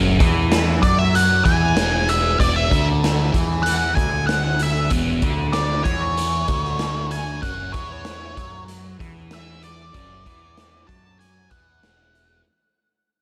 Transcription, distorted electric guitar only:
0.00 0.18 F#2 loud
0.18 0.80 E3 medium
0.81 1.43 F#3 loud
1.44 1.75 E3 loud
1.75 2.37 E2 loud
2.38 2.69 E2 medium
2.70 3.31 D3 medium
3.32 3.95 E3 loud
3.95 4.89 D3 medium
4.90 5.21 E2 loud
5.22 5.84 D3 medium
5.84 6.47 E3 loud
6.48 7.41 D3 loud
7.42 7.73 F#2 loud
7.73 8.35 E3 medium
8.35 8.98 F#3 medium
8.99 9.92 E3 medium
9.93 10.24 F#2 medium
10.25 10.89 E3 medium
10.89 11.50 F#3 medium
11.50 11.81 E3 medium
11.81 12.44 E2 medium

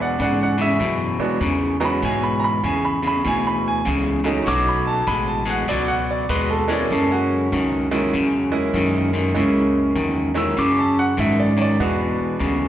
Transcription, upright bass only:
0.00 0.18 E2 medium
0.20 0.79 G#2 medium
0.80 1.16 F#2 medium
1.19 muted upright bass stroke soft
1.41 2.00 E2 medium
2.03 2.62 G#2 medium
2.63 3.23 E2 medium
3.25 3.84 D2 medium
3.87 4.45 C#2 medium
4.47 5.06 B1 medium
5.07 5.67 A1 medium
5.69 6.28 C#2 medium
6.29 6.89 D#2 medium
6.90 7.50 F#2 medium
7.52 8.11 C#2 medium
8.14 8.72 E2 medium
8.74 9.33 F#2 loud
9.35 9.94 C#2 medium
9.96 10.55 E2 medium
10.58 11.17 F#2 medium
11.19 11.77 G#2 loud
11.80 12.15 E2 medium
12.20 muted upright bass stroke soft
12.40 12.68 D2 medium

